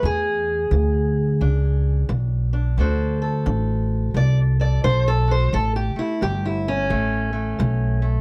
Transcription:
0.03 upright bass E2, steel-string acoustic guitar E2 G#4
0.71 upright bass D2, steel-string acoustic guitar E3
1.41 upright bass C#2, steel-string acoustic guitar E2 D4
2.09 upright bass B1, steel-string acoustic guitar E3
2.53 steel-string acoustic guitar D4
2.77 upright bass D2, steel-string acoustic guitar D3 D4 F#4 A4 C5
3.22 steel-string acoustic guitar A4
3.46 upright bass A1, steel-string acoustic guitar D4
4.14 upright bass C2, steel-string acoustic guitar A2 D5
4.60 steel-string acoustic guitar A4 D5
4.84 upright bass B1, steel-string acoustic guitar D4 C5
5.08 steel-string acoustic guitar A4
5.28 steel-string acoustic guitar F#4 C5
5.53 upright bass A1, steel-string acoustic guitar A2 A4
5.76 steel-string acoustic guitar G4
5.95 steel-string acoustic guitar A3 E4, muted upright bass stroke
6.21 upright bass G1, steel-string acoustic guitar E3 G4
6.45 steel-string acoustic guitar E4
6.68 steel-string acoustic guitar C#4
6.90 upright bass A1, steel-string acoustic guitar E2 A3
7.33 steel-string acoustic guitar A3
7.59 upright bass B1, steel-string acoustic guitar E3
8.02 steel-string acoustic guitar A3

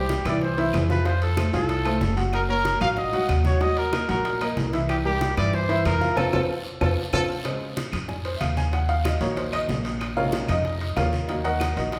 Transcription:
Already playing: upright bass C2, grand piano G3 G4 C5, trumpet G4
0.09 high bongo, high conga, high timbale, short guiro
0.25 upright bass C2, grand piano E3 E4 E5, trumpet D5, high conga, low conga, high timbale, short guiro, claves
0.41 trumpet C5, high bongo, high conga, long guiro
0.57 grand piano E3 E4 E5, high bongo, high conga, high timbale
0.73 upright bass F2, high bongo, low bongo, high conga, high timbale, low timbale, short guiro, claves
0.89 grand piano F3 F4 F5, trumpet B4, high bongo, high conga, short guiro
1.05 grand piano F3 F4 F5, trumpet C5, high bongo, high conga, high timbale, long guiro
1.21 trumpet A4, high bongo, high conga, high timbale
1.37 grand piano A3 A4 C5, high bongo, high conga, high timbale, short guiro, claves
1.53 upright bass C2, grand piano F3 F4 F5, trumpet A4, high timbale, short guiro
1.69 high bongo, high conga, high timbale, long guiro
1.85 grand piano A3 A4 C5, high bongo, high conga, high timbale, claves
2.01 upright bass F#1, high bongo, low bongo, high conga, low timbale, short guiro
2.16 grand piano F#3 F#4 F#5, high timbale, short guiro
2.33 trumpet A#4, high bongo, high conga, high timbale, long guiro, claves
2.49 grand piano A#3 A#4 C#5, trumpet A#4, high bongo, high conga
2.65 high bongo, high conga, high timbale, short guiro
2.80 upright bass A#1, grand piano F#3 F#4 F#5, trumpet F5, high conga, low conga, high timbale, short guiro, claves
2.97 trumpet D#5, high bongo, high conga, low conga, long guiro
3.13 grand piano F#3 F#4 F#5, high bongo, high conga, high timbale
3.29 upright bass D#2, high bongo, low bongo, high conga, high timbale, short guiro, claves
3.44 grand piano F#3 F#4 F#5, trumpet C#5, high bongo, high conga, short guiro
3.61 grand piano F#3 F#4 F#5, trumpet D#5, high bongo, high conga, high timbale, long guiro
3.77 trumpet A#4, high bongo, high conga, high timbale
3.93 grand piano A#3 A#4 D#5, high bongo, high conga, high timbale, short guiro, claves
4.08 upright bass A#1, grand piano F#3 F#4 F#5, trumpet A#4, high timbale, short guiro
4.25 high bongo, high conga, high timbale, long guiro
4.41 grand piano A#3 A#4 D#5, high bongo, high conga, high timbale, claves
4.57 upright bass C2, high bongo, low bongo, high conga, low timbale, short guiro
4.73 grand piano E3 E4 E5, high conga, high timbale, short guiro
4.89 trumpet G4, high bongo, high conga, high timbale, long guiro, claves
5.05 grand piano G3 G4 A#4, trumpet G4, high bongo, high conga
5.21 high bongo, high conga, high timbale, short guiro
5.37 upright bass G2, grand piano E3 E4 E5, trumpet D5, high conga, low conga, high timbale, short guiro, claves
5.53 trumpet C5, high bongo, high conga, long guiro
5.69 grand piano E3 E4 E5, high bongo, high conga, high timbale
5.85 upright bass F2, trumpet A#4, high bongo, low bongo, high conga, high timbale, low timbale, short guiro, claves
6.01 grand piano F3 F4 F5, high bongo, high conga, short guiro
6.17 upright bass F2, grand piano C4 F4 A4, trumpet A4, high bongo, high conga, high timbale, long guiro, claves
6.33 upright bass F2, grand piano C4 F4 A4, trumpet A4, high bongo, high conga, high timbale, long guiro, claves
6.81 upright bass F2, grand piano C4 F4 A4, trumpet A4, high bongo, high conga, high timbale, long guiro, claves
7.13 upright bass F2, grand piano C4 F4 A4, trumpet A4, high bongo, high conga, high timbale, long guiro, claves
7.44 grand piano C#3 G#3 C4, high bongo, high conga, high timbale, long guiro, claves
7.61 high bongo, high conga
7.77 high bongo, high conga, high timbale, short guiro
7.92 upright bass F2, high conga, low conga, high timbale, short guiro, claves
8.08 grand piano G#5, high bongo, high conga, low conga, long guiro
8.25 grand piano C5, high bongo, high conga, high timbale
8.36 grand piano E5
8.41 upright bass D#2, grand piano F5, high bongo, low bongo, high conga, high timbale, short guiro, claves
8.57 grand piano G#5, high bongo, high conga, short guiro
8.73 grand piano F#5, high bongo, high conga, high timbale, long guiro
8.89 grand piano F5, high bongo, high conga, high timbale
9.04 grand piano D#5, high bongo, high conga, high timbale, short guiro, claves
9.21 upright bass A#1, grand piano D#3 F#3 A#3 C#5, high timbale, short guiro
9.37 grand piano C5, high bongo, high conga, high timbale, long guiro
9.53 grand piano D#5, high bongo, high conga, high timbale, claves
9.69 upright bass A#1, high bongo, low bongo, high conga, low timbale, short guiro
9.85 high timbale, short guiro
10.01 high bongo, high conga, high timbale, long guiro, claves
10.16 grand piano C3 C#3 G#3 F4 A#4 C#5 F5, high bongo, high conga
10.32 high bongo, high conga, high timbale, short guiro
10.48 upright bass F2, grand piano D#4 D#5, high conga, low conga, high timbale, short guiro, claves
10.65 high bongo, high conga, long guiro
10.81 high bongo, high conga, high timbale
10.96 upright bass D#2, grand piano F4 A#4 C#5 F5, high bongo, low bongo, high conga, high timbale, low timbale, short guiro, claves
11.12 high bongo, high conga, short guiro
11.28 grand piano D#3 F#3 A#3, high bongo, high conga, high timbale, long guiro
11.44 grand piano F#4 A#4 D#5 F#5, high bongo, high conga, high timbale
11.60 high bongo, high conga, high timbale, short guiro, claves
11.77 upright bass A#1, grand piano D#4 F#4 A#4 D#5, high timbale, short guiro
11.92 high bongo, high conga, high timbale, long guiro

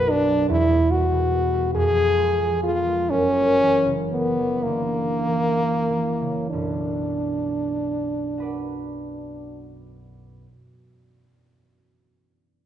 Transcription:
Already playing: harp B1 F#2 F#3 F#4, french horn B4
0.08 harp B3, french horn D4
0.28 harp F#3
0.48 harp E1 E2, french horn E4
0.70 harp B3
0.91 harp G3, french horn F#4
1.11 harp B2
1.32 harp B3
1.53 harp G3
1.74 harp F2, french horn G#4
1.96 harp B3
2.17 harp G#3
2.39 harp F3
2.63 harp B3, french horn F4
2.86 harp G#3
3.10 harp F#1 F#2, french horn C#4
3.36 harp A#3
3.60 harp E3
3.86 harp C#3
4.11 harp A#3, french horn B3
4.38 harp E3
4.63 harp D3, french horn A#3
4.94 harp A#3
5.25 harp E3
5.56 harp A#3
5.90 harp E3
6.21 harp C#3
6.50 harp B1 F#2, french horn D4
8.38 harp F#4 B4
8.42 harp D5

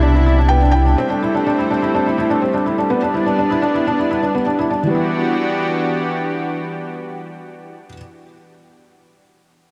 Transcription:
Already playing: sub bass C2, analog synth pad B2 C3 G3 D4 E4
0.02 felt piano D4
0.15 felt piano E4
0.26 felt piano E4
0.38 felt piano D4
0.48 felt piano B3 G5
0.62 felt piano D4
0.71 felt piano E4 G5
0.86 felt piano D4
0.98 analog synth pad A3 C4, felt piano C4
1.10 felt piano D4
1.23 felt piano E4
1.35 felt piano D4
1.46 felt piano D4
1.59 felt piano E4
1.70 felt piano D4
1.82 felt piano E4
1.95 felt piano D4
2.06 felt piano E4
2.18 felt piano E4
2.30 felt piano D4
2.42 felt piano C4
2.54 felt piano D4
2.66 felt piano E4
2.78 felt piano D4
2.90 analog synth pad B3 D4, felt piano B3
3.02 felt piano D4
3.14 felt piano E4
3.26 felt piano D4
3.39 felt piano D4
3.50 felt piano E4
3.62 felt piano D4
3.75 felt piano E4
3.87 felt piano D4
3.99 felt piano E4
4.11 felt piano E4
4.23 felt piano D4
4.34 felt piano B3
4.46 felt piano D4
4.59 felt piano E4
4.70 felt piano D4
4.82 analog synth pad E3 B3 D4 F#4 G4, felt piano E3
4.87 felt piano G3 B3
4.95 felt piano E4

